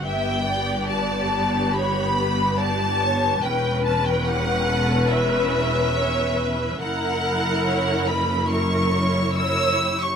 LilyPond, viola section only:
\new Staff \with { instrumentName = "Viola section" } { \time 4/4 \key g \lydian \tempo 4 = 71 << { g'1 | b'1 | ais'2 ais'4 ais'8 g'8 | } \\ { b1 | cis'1 | e'2 e'4 e'4 | } >> }